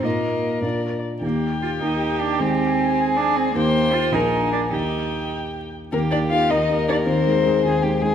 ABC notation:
X:1
M:6/8
L:1/16
Q:3/8=103
K:Eb
V:1 name="Violin"
e6 d4 z2 | g12 | a12 | g6 a6 |
g8- g2 z2 | B2 d2 f2 e4 d2 | c8- c2 z2 |]
V:2 name="Violin"
B8- B z3 | G12- | G6 A6 | c6 B6 |
G8- G z3 | G6 B6- | B6 A2 G2 A2 |]
V:3 name="Cello"
B,6 z6 | B,4 F2 E4 D2 | C8 D2 C2 | B,4 F2 E4 D2 |
E6 z6 | B,2 D2 F2 E4 D2 | C8- C2 z2 |]
V:4 name="Grand piano"
[B,,B,EF]6 [B,,B,DF]6 | [E,,B,EG]6 [E,,B,EG]6 | [E,,A,EA]12 | [E,,B,EG]6 [B,,,B,DA]6 |
[E,,B,EG]12 | [E,,E,]2 [B,EG]2 [B,EG]2 [E,,E,]2 [B,EG]2 [B,EG]2 | [E,,E,]2 [A,EA]2 [A,EA]2 [E,,E,]2 [A,EA]2 [A,EA]2 |]